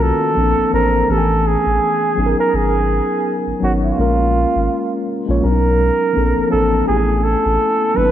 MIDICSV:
0, 0, Header, 1, 4, 480
1, 0, Start_track
1, 0, Tempo, 722892
1, 1683, Time_signature, 4, 2, 24, 8
1, 5389, End_track
2, 0, Start_track
2, 0, Title_t, "Flugelhorn"
2, 0, Program_c, 0, 56
2, 14, Note_on_c, 0, 69, 108
2, 488, Note_off_c, 0, 69, 0
2, 492, Note_on_c, 0, 70, 101
2, 735, Note_on_c, 0, 69, 102
2, 745, Note_off_c, 0, 70, 0
2, 974, Note_on_c, 0, 68, 99
2, 984, Note_off_c, 0, 69, 0
2, 1586, Note_off_c, 0, 68, 0
2, 1593, Note_on_c, 0, 70, 88
2, 1695, Note_on_c, 0, 68, 95
2, 1705, Note_off_c, 0, 70, 0
2, 2239, Note_off_c, 0, 68, 0
2, 2412, Note_on_c, 0, 66, 82
2, 2472, Note_off_c, 0, 66, 0
2, 2553, Note_on_c, 0, 65, 81
2, 3343, Note_off_c, 0, 65, 0
2, 3612, Note_on_c, 0, 70, 90
2, 4301, Note_off_c, 0, 70, 0
2, 4324, Note_on_c, 0, 69, 92
2, 4547, Note_off_c, 0, 69, 0
2, 4563, Note_on_c, 0, 68, 95
2, 4804, Note_on_c, 0, 69, 101
2, 4814, Note_off_c, 0, 68, 0
2, 5289, Note_on_c, 0, 71, 108
2, 5299, Note_off_c, 0, 69, 0
2, 5389, Note_off_c, 0, 71, 0
2, 5389, End_track
3, 0, Start_track
3, 0, Title_t, "Tine electric piano"
3, 0, Program_c, 1, 4
3, 0, Control_c, 1, 64, 127
3, 0, Note_on_c, 1, 51, 68
3, 0, Note_on_c, 1, 58, 65
3, 0, Note_on_c, 1, 59, 64
3, 0, Note_on_c, 1, 61, 68
3, 0, Note_on_c, 1, 66, 76
3, 227, Note_off_c, 1, 58, 0
3, 228, Note_on_c, 1, 53, 75
3, 235, Note_on_c, 1, 58, 68
3, 244, Note_off_c, 1, 59, 0
3, 244, Note_on_c, 1, 60, 65
3, 247, Note_off_c, 1, 61, 0
3, 250, Note_on_c, 1, 62, 70
3, 251, Note_off_c, 1, 66, 0
3, 251, Control_c, 1, 64, 0
3, 257, Note_on_c, 1, 69, 75
3, 258, Note_off_c, 1, 51, 0
3, 387, Control_c, 1, 64, 127
3, 435, Note_off_c, 1, 53, 0
3, 438, Note_off_c, 1, 58, 0
3, 442, Note_off_c, 1, 60, 0
3, 446, Note_off_c, 1, 62, 0
3, 449, Note_off_c, 1, 69, 0
3, 468, Note_on_c, 1, 53, 68
3, 476, Note_on_c, 1, 58, 65
3, 485, Note_on_c, 1, 60, 61
3, 492, Note_on_c, 1, 62, 64
3, 499, Note_on_c, 1, 72, 78
3, 708, Note_on_c, 1, 52, 67
3, 716, Note_off_c, 1, 53, 0
3, 717, Note_on_c, 1, 57, 67
3, 720, Note_off_c, 1, 58, 0
3, 722, Note_on_c, 1, 59, 64
3, 724, Note_off_c, 1, 60, 0
3, 727, Note_off_c, 1, 62, 0
3, 729, Note_on_c, 1, 61, 61
3, 731, Note_off_c, 1, 72, 0
3, 731, Control_c, 1, 64, 0
3, 738, Note_on_c, 1, 67, 62
3, 780, Note_off_c, 1, 67, 0
3, 781, Note_on_c, 1, 80, 80
3, 834, Control_c, 1, 64, 127
3, 1305, Note_off_c, 1, 52, 0
3, 1310, Note_off_c, 1, 57, 0
3, 1312, Note_off_c, 1, 59, 0
3, 1316, Note_off_c, 1, 61, 0
3, 1342, Note_off_c, 1, 80, 0
3, 1429, Note_on_c, 1, 54, 73
3, 1437, Note_on_c, 1, 59, 70
3, 1445, Note_on_c, 1, 61, 72
3, 1451, Control_c, 1, 64, 0
3, 1454, Note_on_c, 1, 63, 68
3, 1460, Note_on_c, 1, 68, 69
3, 1501, Note_off_c, 1, 68, 0
3, 1502, Note_on_c, 1, 70, 85
3, 1585, Control_c, 1, 64, 127
3, 2211, Note_off_c, 1, 54, 0
3, 2215, Note_off_c, 1, 59, 0
3, 2219, Note_off_c, 1, 61, 0
3, 2223, Note_off_c, 1, 63, 0
3, 2247, Note_off_c, 1, 70, 0
3, 2391, Note_on_c, 1, 54, 74
3, 2399, Note_on_c, 1, 59, 66
3, 2405, Note_on_c, 1, 61, 65
3, 2412, Note_on_c, 1, 63, 65
3, 2422, Note_on_c, 1, 73, 80
3, 2630, Note_on_c, 1, 56, 74
3, 2637, Note_off_c, 1, 54, 0
3, 2638, Note_on_c, 1, 58, 69
3, 2639, Note_off_c, 1, 61, 0
3, 2641, Note_off_c, 1, 59, 0
3, 2647, Note_off_c, 1, 63, 0
3, 2647, Note_on_c, 1, 61, 67
3, 2651, Control_c, 1, 64, 0
3, 2651, Note_on_c, 1, 65, 67
3, 2652, Note_off_c, 1, 73, 0
3, 2661, Note_on_c, 1, 70, 83
3, 2758, Control_c, 1, 64, 127
3, 3315, Note_off_c, 1, 56, 0
3, 3320, Note_off_c, 1, 58, 0
3, 3324, Note_off_c, 1, 61, 0
3, 3326, Note_off_c, 1, 65, 0
3, 3331, Note_off_c, 1, 70, 0
3, 3491, Note_on_c, 1, 56, 69
3, 3498, Note_on_c, 1, 58, 62
3, 3506, Note_on_c, 1, 61, 65
3, 3515, Note_on_c, 1, 65, 64
3, 3523, Note_on_c, 1, 73, 81
3, 3568, Note_off_c, 1, 56, 0
3, 3572, Note_off_c, 1, 58, 0
3, 3575, Note_off_c, 1, 61, 0
3, 3580, Note_off_c, 1, 65, 0
3, 3584, Note_off_c, 1, 73, 0
3, 3592, Note_on_c, 1, 54, 71
3, 3601, Note_on_c, 1, 59, 64
3, 3608, Note_on_c, 1, 61, 67
3, 3611, Control_c, 1, 64, 0
3, 3615, Note_on_c, 1, 62, 50
3, 3622, Note_on_c, 1, 70, 76
3, 3658, Note_off_c, 1, 62, 0
3, 3660, Note_on_c, 1, 63, 62
3, 3744, Control_c, 1, 64, 127
3, 4069, Note_on_c, 1, 53, 76
3, 4075, Note_on_c, 1, 58, 70
3, 4078, Note_off_c, 1, 54, 0
3, 4082, Note_off_c, 1, 59, 0
3, 4083, Note_on_c, 1, 60, 66
3, 4085, Note_off_c, 1, 61, 0
3, 4090, Control_c, 1, 64, 0
3, 4091, Note_on_c, 1, 62, 66
3, 4092, Note_off_c, 1, 70, 0
3, 4098, Note_on_c, 1, 69, 79
3, 4111, Note_off_c, 1, 63, 0
3, 4226, Control_c, 1, 64, 127
3, 4275, Note_off_c, 1, 53, 0
3, 4278, Note_off_c, 1, 58, 0
3, 4282, Note_off_c, 1, 60, 0
3, 4286, Note_off_c, 1, 62, 0
3, 4289, Note_off_c, 1, 69, 0
3, 4308, Note_on_c, 1, 53, 70
3, 4315, Note_on_c, 1, 58, 68
3, 4322, Note_on_c, 1, 60, 64
3, 4330, Note_on_c, 1, 62, 66
3, 4337, Note_on_c, 1, 69, 79
3, 4554, Note_on_c, 1, 57, 75
3, 4555, Note_off_c, 1, 53, 0
3, 4559, Note_off_c, 1, 58, 0
3, 4563, Note_off_c, 1, 60, 0
3, 4563, Note_on_c, 1, 59, 68
3, 4566, Note_off_c, 1, 62, 0
3, 4570, Note_off_c, 1, 69, 0
3, 4570, Control_c, 1, 64, 0
3, 4570, Note_on_c, 1, 61, 67
3, 4578, Note_on_c, 1, 64, 67
3, 4584, Note_on_c, 1, 67, 64
3, 4623, Note_off_c, 1, 67, 0
3, 4627, Note_on_c, 1, 80, 80
3, 4692, Control_c, 1, 64, 127
3, 5148, Note_off_c, 1, 57, 0
3, 5153, Note_off_c, 1, 59, 0
3, 5156, Note_off_c, 1, 61, 0
3, 5161, Note_off_c, 1, 64, 0
3, 5185, Note_off_c, 1, 80, 0
3, 5275, Note_on_c, 1, 54, 78
3, 5281, Note_on_c, 1, 58, 56
3, 5288, Note_on_c, 1, 61, 74
3, 5291, Control_c, 1, 64, 0
3, 5298, Note_on_c, 1, 63, 73
3, 5303, Note_on_c, 1, 71, 87
3, 5325, Note_on_c, 1, 59, 74
3, 5332, Note_off_c, 1, 58, 0
3, 5389, Note_off_c, 1, 54, 0
3, 5389, Note_off_c, 1, 59, 0
3, 5389, Note_off_c, 1, 61, 0
3, 5389, Note_off_c, 1, 63, 0
3, 5389, Note_off_c, 1, 71, 0
3, 5389, End_track
4, 0, Start_track
4, 0, Title_t, "Sub bass"
4, 0, Program_c, 2, 38
4, 0, Note_on_c, 2, 35, 108
4, 76, Note_off_c, 2, 35, 0
4, 244, Note_on_c, 2, 34, 89
4, 357, Note_off_c, 2, 34, 0
4, 385, Note_on_c, 2, 33, 45
4, 425, Note_off_c, 2, 33, 0
4, 484, Note_on_c, 2, 33, 87
4, 682, Note_off_c, 2, 33, 0
4, 725, Note_on_c, 2, 33, 88
4, 1036, Note_off_c, 2, 33, 0
4, 1105, Note_on_c, 2, 33, 79
4, 1188, Note_off_c, 2, 33, 0
4, 1445, Note_on_c, 2, 32, 98
4, 1558, Note_off_c, 2, 32, 0
4, 1684, Note_on_c, 2, 32, 109
4, 1996, Note_off_c, 2, 32, 0
4, 2304, Note_on_c, 2, 32, 47
4, 2344, Note_off_c, 2, 32, 0
4, 2406, Note_on_c, 2, 32, 93
4, 2603, Note_off_c, 2, 32, 0
4, 2646, Note_on_c, 2, 34, 94
4, 2957, Note_off_c, 2, 34, 0
4, 3027, Note_on_c, 2, 32, 86
4, 3109, Note_off_c, 2, 32, 0
4, 3510, Note_on_c, 2, 34, 89
4, 3591, Note_off_c, 2, 34, 0
4, 3613, Note_on_c, 2, 35, 107
4, 3921, Note_off_c, 2, 35, 0
4, 4094, Note_on_c, 2, 34, 94
4, 4203, Note_off_c, 2, 34, 0
4, 4234, Note_on_c, 2, 33, 46
4, 4271, Note_off_c, 2, 33, 0
4, 4335, Note_on_c, 2, 33, 82
4, 4528, Note_off_c, 2, 33, 0
4, 4575, Note_on_c, 2, 33, 91
4, 4882, Note_off_c, 2, 33, 0
4, 4951, Note_on_c, 2, 33, 87
4, 5032, Note_off_c, 2, 33, 0
4, 5293, Note_on_c, 2, 32, 95
4, 5389, Note_off_c, 2, 32, 0
4, 5389, End_track
0, 0, End_of_file